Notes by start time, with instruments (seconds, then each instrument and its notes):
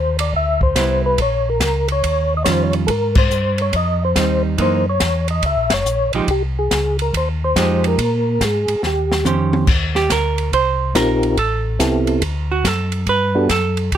Already playing: tonewheel organ D#2 C5
0.19 tonewheel organ D5, ride
0.33 tonewheel organ D2 E5, kick
0.61 tonewheel organ C5, kick
0.75 tonewheel organ C2, hollow-body jazz guitar G3 B3 E4, kick, snare, hi-hat pedal, ride
1.06 tonewheel organ B4
1.18 tonewheel organ A#1, kick, ride
1.22 tonewheel organ C#5
1.50 tonewheel organ A#4
1.60 tonewheel organ C#2, kick, snare, hi-hat pedal, ride
1.88 tonewheel organ C#5, ride
2.03 tonewheel organ D#2, kick, ride
2.37 tonewheel organ D#5
2.44 tonewheel organ F2 C#5, hollow-body jazz guitar D#3 G3 C#4 F4, kick, snare, hi-hat pedal, ride
2.52 tonewheel organ C5
2.64 tonewheel organ C#5
2.73 ride
2.87 tonewheel organ G#2 A4 A#4, kick, ride
3.15 tonewheel organ C5, kick, crash
3.30 tonewheel organ G2, hi-hat pedal
3.58 tonewheel organ C#5, ride
3.73 tonewheel organ F2 D#5, kick, ride
4.05 tonewheel organ C5
4.15 tonewheel organ D#2, hollow-body jazz guitar G3 C4 D#4, kick, snare, hi-hat pedal, ride
4.58 tonewheel organ F#2 C5, hollow-body jazz guitar E3 A#3 D#4, kick, ride
4.89 tonewheel organ C#5
5.00 tonewheel organ E2, kick, snare, hi-hat pedal, ride
5.28 tonewheel organ D#5, ride
5.43 tonewheel organ C#2 E5, kick, ride
5.57 tonewheel organ A#1
5.70 tonewheel organ F#1 C#5, snare, ride
5.85 tonewheel organ A#1, hi-hat pedal
6.13 tonewheel organ A#1, hollow-body jazz guitar F3 G#3 D#4 G4, ride
6.27 tonewheel organ C2 G4, kick, ride
6.59 tonewheel organ G#4
6.70 tonewheel organ C#2, kick, snare, hi-hat pedal, ride
6.99 tonewheel organ A#4, ride
7.13 tonewheel organ D#2, kick, ride
7.17 tonewheel organ C5
7.44 tonewheel organ C5
7.55 tonewheel organ F2, hollow-body jazz guitar F3 G#3 D#4 G4, kick, snare, hi-hat pedal, ride
7.84 tonewheel organ A#4, ride
7.98 tonewheel organ A#2, kick, ride
8.40 tonewheel organ G#2 G#4, kick, snare, hi-hat pedal, ride
8.68 tonewheel organ G#2, ride
8.83 tonewheel organ D#2 G4, snare
9.12 snare
9.25 tonewheel organ F2, hollow-body jazz guitar D#3 C#4 G4 C5, hi-hat pedal, high tom
9.53 high tom
9.67 tonewheel organ D#2, kick, crash
9.95 hollow-body jazz guitar G4, snare
10.10 tonewheel organ D2, hollow-body jazz guitar A#4, kick, snare, hi-hat pedal, ride
10.38 ride
10.52 tonewheel organ C2, hollow-body jazz guitar C5, kick, ride
10.95 tonewheel organ A#1 C4 D#4 F4 G4 A#4, hollow-body jazz guitar A#4, kick, snare, hi-hat pedal, ride
11.23 ride
11.37 tonewheel organ A1, hollow-body jazz guitar A4, kick, ride
11.79 tonewheel organ C2 B3 C4 E4 G4 A4, kick, snare, hi-hat pedal, ride
12.07 ride
12.22 tonewheel organ D2, kick, ride
12.52 hollow-body jazz guitar F#4
12.64 tonewheel organ F#2, hollow-body jazz guitar A4, kick, snare, hi-hat pedal, ride
12.92 ride
13.06 tonewheel organ G2, hollow-body jazz guitar B4, kick, ride
13.35 tonewheel organ B3 D4 F#4 G4 A4
13.49 tonewheel organ F#2, hollow-body jazz guitar A4, kick, snare, hi-hat pedal, ride
13.77 ride
13.91 tonewheel organ D2, kick, ride